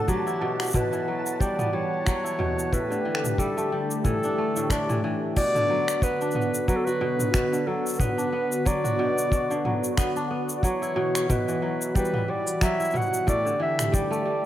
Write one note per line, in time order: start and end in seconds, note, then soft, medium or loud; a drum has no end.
0.00 0.14 D3 medium
0.00 1.58 B3 medium
0.00 1.29 D4 medium
0.00 0.11 A4 loud
0.00 2.68 F#5 medium
0.00 5.38 A5 medium
0.08 2.69 E3 medium
0.08 1.07 F#3 medium
0.08 0.77 G4 medium
0.08 kick medium
0.08 cabasa soft
0.26 1.83 E4 medium
0.26 cabasa soft
0.41 0.73 B2 medium
0.60 finger snap medium
0.60 cabasa soft
0.62 cabasa soft
0.64 cabasa soft
0.66 cabasa soft
0.68 cabasa soft
0.70 cabasa soft
0.73 2.38 B2 medium
0.73 kick medium
0.73 mid tom medium
0.73 cabasa soft
0.74 1.43 B4 medium
0.74 cabasa medium
0.93 2.45 E3 medium
0.93 cabasa soft
1.08 2.05 F#3 medium
1.26 cabasa medium
1.40 1.72 G3 medium
1.40 1.76 D5 loud
1.40 kick loud
1.40 cabasa soft
1.59 3.45 B3 medium
1.59 mid tom medium
1.59 cabasa soft
1.73 2.78 G3 medium
1.73 2.74 C#5 loud
2.06 2.78 F#3 loud
2.06 finger snap medium
2.06 kick loud
2.06 cabasa soft
2.24 3.81 E4 medium
2.24 cabasa soft
2.39 2.78 B2 medium
2.39 mid tom medium
2.59 cabasa medium
2.71 2.94 A2 medium
2.71 5.33 D3 medium
2.71 5.33 A3 medium
2.71 5.33 G4 medium
2.71 3.40 B4 loud
2.71 kick medium
2.71 cabasa soft
2.90 4.59 D3 medium
2.90 cabasa soft
3.05 4.03 E3 medium
3.15 finger snap medium
3.24 mid tom medium
3.24 cabasa medium
3.38 3.71 G3 loud
3.38 3.78 A4 medium
3.38 kick medium
3.38 cabasa medium
3.57 4.38 A3 medium
3.57 cabasa soft
3.72 5.41 G3 medium
3.91 cabasa medium
4.04 4.88 E3 medium
4.04 4.73 A4 loud
4.04 kick loud
4.04 mid tom medium
4.04 cabasa soft
4.23 4.71 D4 medium
4.23 cabasa soft
4.38 6.38 A3 medium
4.56 5.41 A2 loud
4.56 cabasa medium
4.70 6.21 D4 medium
4.70 5.22 D5 medium
4.70 finger snap medium
4.70 kick medium
4.70 cabasa medium
4.89 5.03 E3 medium
4.89 mid tom medium
4.89 cabasa soft
5.04 5.41 E3 loud
5.36 5.58 B2 medium
5.36 10.60 D3 medium
5.36 10.60 B3 medium
5.36 13.24 F#4 medium
5.36 6.05 D5 loud
5.36 kick loud
5.36 crash loud
5.36 cabasa medium
5.55 7.06 D3 medium
5.55 mid tom medium
5.55 cabasa soft
5.69 6.67 F#3 medium
5.88 finger snap medium
5.88 cabasa medium
6.02 6.35 B3 loud
6.02 6.68 B4 loud
6.02 kick loud
6.02 cabasa medium
6.21 7.89 D4 medium
6.21 cabasa soft
6.31 mid tom medium
6.31 cabasa soft
6.36 7.99 B3 medium
6.41 cabasa soft
6.54 cabasa medium
6.68 7.56 F#3 medium
6.68 6.78 B4 loud
6.68 kick loud
6.68 cabasa medium
6.76 6.86 A4 medium
6.85 8.33 F#4 medium
6.85 7.68 B4 loud
6.85 cabasa soft
7.01 7.33 B2 loud
7.19 mid tom medium
7.19 cabasa medium
7.34 7.56 B2 medium
7.34 finger snap medium
7.34 kick loud
7.34 cabasa medium
7.52 9.04 D3 medium
7.52 cabasa soft
7.67 8.64 F#3 medium
7.67 8.01 A4 medium
7.86 cabasa medium
7.88 cabasa medium
7.88 cabasa soft
7.95 cabasa soft
7.98 8.32 B3 medium
7.98 8.68 B4 loud
7.98 kick loud
7.98 mid tom medium
7.98 cabasa soft
8.00 cabasa medium
8.18 9.86 D4 medium
8.18 cabasa soft
8.33 9.97 B3 medium
8.52 cabasa medium
8.65 9.53 F#3 medium
8.65 9.98 D5 loud
8.65 kick loud
8.65 cabasa medium
8.84 10.30 F#4 medium
8.84 mid tom medium
8.84 cabasa soft
8.99 9.31 B2 loud
9.18 cabasa medium
9.32 9.53 B2 medium
9.32 kick loud
9.32 cabasa medium
9.50 10.69 D3 medium
9.50 cabasa soft
9.65 10.62 F#3 medium
9.65 mid tom medium
9.84 cabasa medium
9.97 10.30 B3 loud
9.97 finger snap medium
9.97 kick loud
9.97 cabasa medium
10.16 11.84 D4 medium
10.16 cabasa soft
10.31 12.13 B3 medium
10.49 cabasa medium
10.57 10.66 D5 medium
10.63 13.24 E3 medium
10.63 11.61 F#3 medium
10.63 11.32 C#5 medium
10.63 kick loud
10.63 cabasa medium
10.82 12.39 E4 medium
10.82 cabasa soft
10.96 11.28 B2 loud
11.15 finger snap medium
11.15 cabasa medium
11.29 12.92 B2 loud
11.29 11.96 B4 medium
11.29 kick medium
11.29 mid tom medium
11.29 cabasa medium
11.48 13.00 E3 medium
11.48 cabasa soft
11.62 12.60 F#3 medium
11.81 cabasa medium
11.95 12.27 G3 medium
11.95 12.31 B4 loud
11.95 kick loud
11.95 cabasa medium
12.05 cabasa soft
12.14 14.00 B3 medium
12.14 mid tom medium
12.28 13.33 G3 medium
12.28 12.65 D5 loud
12.47 cabasa medium
12.61 13.33 F#3 loud
12.61 12.98 E5 loud
12.61 finger snap medium
12.61 kick loud
12.61 cabasa medium
12.80 14.37 E4 medium
12.80 cabasa soft
12.84 cabasa soft
12.91 13.33 B2 medium
12.91 cabasa soft
12.95 13.28 F#5 loud
12.95 mid tom medium
12.95 cabasa soft
13.02 cabasa soft
13.06 cabasa soft
13.14 cabasa medium
13.27 13.49 A2 medium
13.27 14.46 D3 medium
13.27 14.46 A3 medium
13.27 14.46 G4 medium
13.27 13.59 D5 loud
13.27 kick medium
13.27 cabasa medium
13.45 14.46 D3 medium
13.45 cabasa soft
13.60 14.46 E3 medium
13.60 13.96 E5 loud
13.79 finger snap medium
13.79 mid tom medium
13.79 cabasa medium
13.92 14.24 G3 medium
13.92 14.46 D5 medium
13.92 kick loud
13.92 cabasa medium
14.11 14.46 A3 medium
14.11 cabasa soft
14.25 14.46 G3 medium